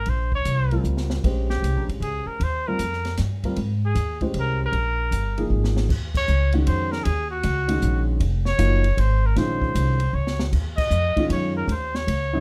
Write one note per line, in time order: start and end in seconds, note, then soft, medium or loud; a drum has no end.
0.00 0.11 A#4 medium
0.06 0.45 A#1 medium
0.06 0.34 C5 medium
0.06 ride soft
0.32 0.83 C#5 medium
0.32 kick medium
0.45 0.83 C2 medium
0.45 hi-hat pedal medium
0.45 ride medium
0.71 1.21 G3 soft
0.71 1.21 C4 soft
0.71 1.22 F4 medium
0.71 1.22 A#4 medium
0.71 ride soft
0.84 1.22 C#2 medium
0.84 hi-hat pedal medium
0.97 snare soft
1.10 snare medium
1.24 1.62 A#1 medium
1.24 2.32 G#3 medium
1.24 2.33 C#4 soft
1.24 2.33 G4 soft
1.24 2.33 C5 medium
1.24 kick medium
1.24 ride medium
1.50 1.86 G4 medium
1.50 snare soft
1.62 1.76 C2 medium
1.62 hi-hat pedal soft
1.62 ride medium
1.76 1.88 A#1 soft
1.88 2.00 G#1 medium
1.88 ride soft
2.00 2.24 C#2 medium
2.00 2.29 G#4 medium
2.00 ride soft
2.26 2.45 A#4 medium
2.26 muted upright bass stroke soft
2.40 2.78 D#2 medium
2.40 2.69 C5 medium
2.40 ride medium
2.68 2.79 G3 medium
2.68 2.79 C4 medium
2.68 2.79 F4 soft
2.68 3.19 A#4 medium
2.68 2.79 A#4 medium
2.79 3.17 F2 medium
2.79 hi-hat pedal medium
2.79 ride medium
2.93 snare soft
3.05 snare soft
3.05 ride soft
3.17 3.56 G2 medium
3.17 snare soft
3.17 hi-hat pedal medium
3.17 ride medium
3.44 3.56 G3 medium
3.44 3.56 C4 medium
3.44 3.57 F4 medium
3.44 3.56 A#4 medium
3.44 kick soft
3.44 ride soft
3.56 3.94 G#2 medium
3.56 ride soft
3.86 4.20 G#4 medium
3.95 4.33 D#2 medium
3.95 hi-hat pedal medium
3.95 ride medium
4.21 4.71 G#3 medium
4.21 4.71 C#4 soft
4.21 4.71 G4 soft
4.21 4.71 C5 medium
4.21 kick soft
4.21 ride soft
4.34 4.72 C2 medium
4.34 ride medium
4.39 4.61 A#4 loud
4.66 5.50 A#4 medium
4.72 5.10 A#1 medium
4.72 ride soft
5.11 5.49 G1 medium
5.11 hi-hat pedal medium
5.11 ride medium
5.38 5.87 F3 soft
5.38 5.87 A#3 soft
5.38 5.87 D#4 soft
5.38 5.87 G#4 medium
5.38 ride soft
5.50 5.88 G#1 medium
5.64 snare medium
5.76 snare medium
5.89 6.27 D#2 medium
5.89 kick medium
5.89 crash medium
6.15 6.52 C#5 loud
6.15 kick medium
6.15 crash medium
6.28 6.66 C#2 medium
6.28 hi-hat pedal medium
6.52 7.03 D#3 medium
6.52 7.03 G#3 medium
6.52 7.03 C#4 medium
6.52 7.03 F#4 medium
6.52 ride soft
6.67 7.05 F2 medium
6.67 6.93 C5 medium
6.67 ride medium
6.92 7.05 A#4 medium
6.92 snare soft
7.04 7.43 D#2 medium
7.04 7.30 G#4 medium
7.04 ride medium
7.31 8.04 F#4 medium
7.43 7.81 C#2 medium
7.43 hi-hat pedal soft
7.43 ride medium
7.68 8.18 D#3 medium
7.68 8.18 G#3 medium
7.68 8.18 C#4 medium
7.68 8.18 F#4 medium
7.68 ride medium
7.82 8.19 A#1 medium
7.82 hi-hat pedal medium
8.20 8.58 F1 medium
8.20 ride medium
8.45 9.01 C#5 loud
8.45 snare soft
8.59 8.97 F#1 medium
8.59 8.82 F3 medium
8.59 8.82 A#3 medium
8.59 8.82 D#4 medium
8.59 8.82 F#4 medium
8.59 hi-hat pedal medium
8.59 ride medium
8.84 ride soft
8.97 9.35 G#1 medium
8.97 9.28 C5 medium
8.97 ride medium
9.26 9.39 A#4 medium
9.36 9.74 A#1 medium
9.36 9.95 D#3 medium
9.36 9.95 G#3 medium
9.36 9.95 C#4 medium
9.36 9.96 F4 medium
9.36 10.16 C5 medium
9.36 snare soft
9.36 ride medium
9.62 kick medium
9.75 10.12 C2 medium
9.75 hi-hat pedal medium
9.75 ride medium
10.00 ride soft
10.13 10.51 C#2 medium
10.13 10.46 C#5 medium
10.27 snare medium
10.39 snare medium
10.53 10.90 D#2 medium
10.53 kick medium
10.53 crash medium
10.77 11.26 D#5 loud
10.77 kick medium
10.77 crash medium
10.91 11.14 F2 medium
10.91 hi-hat pedal medium
11.16 11.66 D#3 medium
11.16 11.66 G#3 medium
11.16 11.66 C#4 medium
11.16 11.66 F4 medium
11.16 muted upright bass stroke soft
11.16 kick medium
11.16 ride soft
11.29 11.67 F#2 medium
11.29 11.54 C#5 medium
11.29 ride medium
11.57 11.68 A#4 medium
11.68 12.05 D#2 medium
11.68 11.73 A#4 medium
11.68 11.97 C5 medium
11.68 ride medium
11.95 12.40 C#5 medium
11.95 snare soft
12.07 12.40 C#2 medium
12.07 ride medium
12.33 12.40 C3 medium
12.33 12.40 C#3 medium
12.33 12.40 F#3 medium
12.33 12.40 D#4 medium